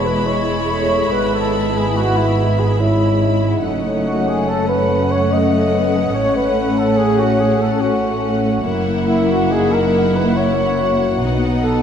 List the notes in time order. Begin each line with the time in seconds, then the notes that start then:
Already playing: E1 E2 G#3 B3 E4 B5
0.06 B4
0.26 G#3 C#5
0.70 A3
1.11 G#1 G#2 G#3 B3 E4 B4
1.35 A4
1.78 G#4
1.97 F#4
2.18 E4
2.60 G#4
2.79 G#3 C#4 E4
3.24 D#4
3.64 F#1 F#2 A3 C#4 D#4 F#5
4.07 F#4
4.29 G#4
4.48 A3 C#4 A4
4.69 B4
5.12 C#5
5.31 A3 D#5
5.74 B3
6.13 A1 A2 A3 C#4 C#5
6.36 B4
6.79 A4
6.98 G#4
7.20 F#4
7.40 G#4
7.62 A4
7.79 A3 C#4 F#4
8.65 F#1 F#2 A#3 E4 F#5
9.08 E4
9.31 F#4
9.51 D#4 G#4
9.73 A#4
10.16 B4
10.36 A#3 C#4 E4 C#5
10.80 F#4
11.20 B1 B2 B3 D#4
11.63 A4